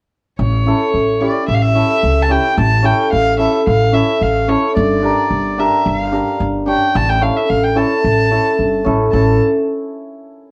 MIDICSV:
0, 0, Header, 1, 4, 480
1, 0, Start_track
1, 0, Tempo, 545951
1, 338, Time_signature, 4, 2, 24, 8
1, 9242, End_track
2, 0, Start_track
2, 0, Title_t, "Violin"
2, 0, Program_c, 0, 40
2, 344, Note_on_c, 0, 73, 70
2, 1061, Note_on_c, 0, 74, 70
2, 1074, Note_off_c, 0, 73, 0
2, 1298, Note_off_c, 0, 74, 0
2, 1303, Note_on_c, 0, 76, 91
2, 1360, Note_on_c, 0, 77, 79
2, 1373, Note_off_c, 0, 76, 0
2, 1428, Note_on_c, 0, 76, 98
2, 1441, Note_off_c, 0, 77, 0
2, 1955, Note_on_c, 0, 81, 78
2, 1968, Note_off_c, 0, 76, 0
2, 2034, Note_on_c, 0, 79, 82
2, 2047, Note_off_c, 0, 81, 0
2, 2270, Note_off_c, 0, 79, 0
2, 2284, Note_on_c, 0, 81, 88
2, 2508, Note_on_c, 0, 79, 88
2, 2522, Note_off_c, 0, 81, 0
2, 2745, Note_off_c, 0, 79, 0
2, 2751, Note_on_c, 0, 77, 97
2, 2973, Note_off_c, 0, 77, 0
2, 2987, Note_on_c, 0, 76, 76
2, 3212, Note_off_c, 0, 76, 0
2, 3242, Note_on_c, 0, 77, 82
2, 3465, Note_on_c, 0, 76, 75
2, 3478, Note_off_c, 0, 77, 0
2, 3713, Note_on_c, 0, 77, 79
2, 3727, Note_off_c, 0, 76, 0
2, 3951, Note_on_c, 0, 73, 75
2, 3964, Note_off_c, 0, 77, 0
2, 4184, Note_off_c, 0, 73, 0
2, 4190, Note_on_c, 0, 74, 74
2, 4923, Note_on_c, 0, 76, 63
2, 4936, Note_off_c, 0, 74, 0
2, 5164, Note_on_c, 0, 77, 73
2, 5178, Note_off_c, 0, 76, 0
2, 5641, Note_off_c, 0, 77, 0
2, 5877, Note_on_c, 0, 79, 87
2, 6120, Note_on_c, 0, 81, 94
2, 6133, Note_off_c, 0, 79, 0
2, 6236, Note_on_c, 0, 79, 85
2, 6249, Note_off_c, 0, 81, 0
2, 6352, Note_on_c, 0, 77, 89
2, 6365, Note_off_c, 0, 79, 0
2, 6478, Note_on_c, 0, 76, 79
2, 6491, Note_off_c, 0, 77, 0
2, 6590, Note_on_c, 0, 77, 82
2, 6603, Note_off_c, 0, 76, 0
2, 6712, Note_on_c, 0, 79, 76
2, 6725, Note_off_c, 0, 77, 0
2, 6832, Note_on_c, 0, 81, 90
2, 6845, Note_off_c, 0, 79, 0
2, 7790, Note_off_c, 0, 81, 0
2, 8016, Note_on_c, 0, 81, 68
2, 8245, Note_off_c, 0, 81, 0
2, 9242, End_track
3, 0, Start_track
3, 0, Title_t, "Hammered dulcimer"
3, 0, Program_c, 1, 15
3, 579, Note_on_c, 1, 61, 65
3, 582, Note_on_c, 1, 64, 59
3, 595, Note_on_c, 1, 69, 76
3, 699, Note_off_c, 1, 61, 0
3, 700, Note_off_c, 1, 64, 0
3, 707, Note_off_c, 1, 69, 0
3, 1058, Note_on_c, 1, 61, 66
3, 1062, Note_on_c, 1, 64, 55
3, 1071, Note_on_c, 1, 67, 65
3, 1180, Note_off_c, 1, 61, 0
3, 1181, Note_off_c, 1, 64, 0
3, 1186, Note_off_c, 1, 67, 0
3, 1538, Note_on_c, 1, 61, 52
3, 1543, Note_on_c, 1, 64, 57
3, 1552, Note_on_c, 1, 69, 63
3, 1660, Note_off_c, 1, 61, 0
3, 1663, Note_off_c, 1, 64, 0
3, 1667, Note_off_c, 1, 69, 0
3, 2010, Note_on_c, 1, 61, 55
3, 2018, Note_on_c, 1, 64, 53
3, 2027, Note_on_c, 1, 67, 70
3, 2137, Note_off_c, 1, 61, 0
3, 2142, Note_off_c, 1, 64, 0
3, 2146, Note_off_c, 1, 67, 0
3, 2485, Note_on_c, 1, 61, 72
3, 2494, Note_on_c, 1, 64, 62
3, 2500, Note_on_c, 1, 69, 72
3, 2616, Note_off_c, 1, 61, 0
3, 2620, Note_off_c, 1, 64, 0
3, 2623, Note_off_c, 1, 69, 0
3, 2965, Note_on_c, 1, 61, 60
3, 2977, Note_on_c, 1, 64, 65
3, 2982, Note_on_c, 1, 69, 72
3, 3097, Note_off_c, 1, 61, 0
3, 3103, Note_off_c, 1, 64, 0
3, 3105, Note_off_c, 1, 69, 0
3, 3452, Note_on_c, 1, 61, 65
3, 3456, Note_on_c, 1, 64, 55
3, 3464, Note_on_c, 1, 69, 52
3, 3582, Note_off_c, 1, 61, 0
3, 3584, Note_off_c, 1, 64, 0
3, 3588, Note_off_c, 1, 69, 0
3, 3938, Note_on_c, 1, 61, 72
3, 3943, Note_on_c, 1, 64, 55
3, 3947, Note_on_c, 1, 69, 71
3, 4066, Note_off_c, 1, 61, 0
3, 4068, Note_off_c, 1, 64, 0
3, 4070, Note_off_c, 1, 69, 0
3, 4418, Note_on_c, 1, 62, 71
3, 4422, Note_on_c, 1, 67, 58
3, 4434, Note_on_c, 1, 70, 72
3, 4546, Note_off_c, 1, 62, 0
3, 4548, Note_off_c, 1, 67, 0
3, 4554, Note_off_c, 1, 70, 0
3, 4907, Note_on_c, 1, 62, 73
3, 4913, Note_on_c, 1, 67, 68
3, 4920, Note_on_c, 1, 70, 82
3, 5031, Note_off_c, 1, 62, 0
3, 5034, Note_off_c, 1, 67, 0
3, 5038, Note_off_c, 1, 70, 0
3, 5383, Note_on_c, 1, 62, 59
3, 5384, Note_on_c, 1, 67, 59
3, 5389, Note_on_c, 1, 70, 61
3, 5510, Note_off_c, 1, 62, 0
3, 5510, Note_off_c, 1, 67, 0
3, 5513, Note_off_c, 1, 70, 0
3, 5855, Note_on_c, 1, 62, 65
3, 5868, Note_on_c, 1, 67, 61
3, 5872, Note_on_c, 1, 73, 72
3, 5986, Note_off_c, 1, 62, 0
3, 5992, Note_off_c, 1, 67, 0
3, 5994, Note_off_c, 1, 73, 0
3, 6338, Note_on_c, 1, 61, 70
3, 6341, Note_on_c, 1, 64, 63
3, 6346, Note_on_c, 1, 69, 71
3, 6467, Note_off_c, 1, 61, 0
3, 6468, Note_off_c, 1, 64, 0
3, 6471, Note_off_c, 1, 69, 0
3, 6815, Note_on_c, 1, 61, 69
3, 6819, Note_on_c, 1, 64, 63
3, 6828, Note_on_c, 1, 69, 74
3, 6944, Note_off_c, 1, 61, 0
3, 6947, Note_off_c, 1, 64, 0
3, 6951, Note_off_c, 1, 69, 0
3, 7303, Note_on_c, 1, 61, 54
3, 7309, Note_on_c, 1, 64, 54
3, 7315, Note_on_c, 1, 69, 62
3, 7428, Note_off_c, 1, 61, 0
3, 7431, Note_off_c, 1, 64, 0
3, 7433, Note_off_c, 1, 69, 0
3, 7776, Note_on_c, 1, 61, 78
3, 7790, Note_on_c, 1, 69, 81
3, 7791, Note_on_c, 1, 64, 64
3, 7903, Note_off_c, 1, 61, 0
3, 7910, Note_off_c, 1, 69, 0
3, 7911, Note_off_c, 1, 64, 0
3, 8031, Note_on_c, 1, 69, 67
3, 8033, Note_on_c, 1, 61, 57
3, 8035, Note_on_c, 1, 64, 56
3, 8252, Note_off_c, 1, 69, 0
3, 8254, Note_off_c, 1, 61, 0
3, 8254, Note_off_c, 1, 64, 0
3, 9242, End_track
4, 0, Start_track
4, 0, Title_t, "Upright bass"
4, 0, Program_c, 2, 32
4, 339, Note_on_c, 2, 33, 94
4, 627, Note_off_c, 2, 33, 0
4, 825, Note_on_c, 2, 33, 63
4, 1112, Note_off_c, 2, 33, 0
4, 1306, Note_on_c, 2, 33, 85
4, 1593, Note_off_c, 2, 33, 0
4, 1788, Note_on_c, 2, 37, 77
4, 2076, Note_off_c, 2, 37, 0
4, 2266, Note_on_c, 2, 33, 99
4, 2555, Note_off_c, 2, 33, 0
4, 2749, Note_on_c, 2, 33, 70
4, 3038, Note_off_c, 2, 33, 0
4, 3228, Note_on_c, 2, 33, 93
4, 3518, Note_off_c, 2, 33, 0
4, 3706, Note_on_c, 2, 33, 77
4, 3996, Note_off_c, 2, 33, 0
4, 4191, Note_on_c, 2, 31, 104
4, 4480, Note_off_c, 2, 31, 0
4, 4665, Note_on_c, 2, 31, 80
4, 4957, Note_off_c, 2, 31, 0
4, 5153, Note_on_c, 2, 31, 90
4, 5442, Note_off_c, 2, 31, 0
4, 5630, Note_on_c, 2, 31, 86
4, 5920, Note_off_c, 2, 31, 0
4, 6112, Note_on_c, 2, 33, 107
4, 6401, Note_off_c, 2, 33, 0
4, 6592, Note_on_c, 2, 33, 75
4, 6880, Note_off_c, 2, 33, 0
4, 7072, Note_on_c, 2, 33, 82
4, 7360, Note_off_c, 2, 33, 0
4, 7553, Note_on_c, 2, 31, 68
4, 7768, Note_off_c, 2, 31, 0
4, 7792, Note_on_c, 2, 33, 74
4, 8006, Note_off_c, 2, 33, 0
4, 8027, Note_on_c, 2, 33, 89
4, 8250, Note_off_c, 2, 33, 0
4, 9242, End_track
0, 0, End_of_file